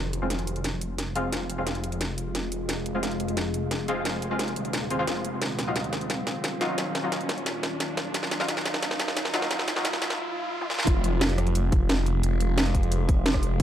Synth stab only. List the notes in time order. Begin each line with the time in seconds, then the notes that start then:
0.22 G#3 C4 F4
1.16 G#3 C4 F4
1.58 G#3 C4 F4
2.94 G#3 C4 F4
3.88 G#3 C4 F4
4.31 G#3 C4 F4
4.90 G#3 C4 F4
4.99 G#3 C4 F4
5.67 F#3 D#4 F4
6.61 F#3 D#4 F4
7.04 F#3 D#4 F4
8.40 F#3 D#4 F4
9.34 F#3 D#4 F4
9.76 F#3 D#4 F4